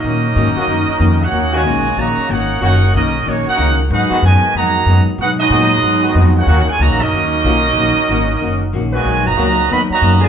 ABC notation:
X:1
M:4/4
L:1/8
Q:"Swing" 1/4=186
K:Ebm
V:1 name="Trumpet section"
[DGBe]6- [DGBe] [EBdg]- | [EBdg] [Gdea]3 [Gdeb]2 [EBdg]2 | [EBdg]2 [DGBe]2 [B,EGd] [EBdg]2 z | [EAcg]2 [Gcea]2 [Aegb]3 z |
[EAcg] [GAce]6 [EBdg]- | [EBdg] [FBda] [Gdeb] [DGBe]4- [DGBe]- | [DGBe]6 z [Gcea]- | [Gcea] [^F=B^d^a]3 [F^Ad=b] [FBda]2 [=F_d=d_a] |]
V:2 name="Trombone section"
z3 [E,B,DG] z4 | z [E,B,DG] z6 | [E,B,DG] z4 z [E,B,DE] z | z [E,A,CG] z6 |
z2 [E,A,CG] z2 [E,A,CG]3 | [E,B,DG] z4 z [E,B,DF] z | z6 z [E,DGc]- | [E,DGc]2 [^D,^A,=B,^F] z4 [=D,A,B,_A] |]
V:3 name="Hollow-body jazz guitar"
[E,B,DG] z [E,B,DG] z [E,B,DG] z [E,B,DG] z | [E,B,DG] z [E,B,DG] z [E,B,DG] z [E,B,DG] z | [E,B,DG] z [E,B,DG] z [E,B,DG] z [E,B,DG] z | [A,,G,CE] z [A,,G,CE] z [A,,G,CE] z [A,,G,CE] z |
[A,,G,CE] z [A,,G,CE] z [A,,G,CE] z [A,,G,CE] z | [E,B,DG] z [E,B,DG] z [E,B,DG] z [E,B,DG] z | [E,B,DG] z [E,B,DG] z [E,B,DG] z [E,B,DG] z | [=B,,^F,^A,^D] z [B,,F,A,D] z [B,,F,A,D] z [B,,F,A,D] z |]
V:4 name="Trombone section"
[G,B,E]6- [G,B,E] [B,DG]- | [B,DG] [B,,D,A,]3 [D,G,B,]2 [B,DG]2 | [B,DG]2 [G,B,E]2 [G,B,D] [B,DG]2 z | [CEG]2 [C,E,A,]2 [E,B,G]3 z |
[CEG] [G,A,E]6 [B,DG]- | [B,DG] A, [D,G,B,] [G,B,E]4- [G,B,E]- | [G,B,E]6 z [B,,E,A,]- | [B,,E,A,] [^A,,^D,^F,]3 [D,F,=B,] [A,,D,F,]2 [=D,=F,_A,] |]
V:5 name="Upright bass" clef=bass
B,,2 A,, z G,, z F,,2 | E,,2 C,,2 B,,, z A,,,2 | G,,,2 C,,2 B,,, z D,,2 | A,, z G,, z F,,2 G,, z |
C,2 B,,2 A,,2 F,,2 | E,, z (3D,, B,,, G,,, E,,2 C,,2 | B,,, z A,,,2 G,,,2 B,,,2 | (3=B,,, ^A,,, ^F,,, D,,2 ^D,, z ^F,,2 |]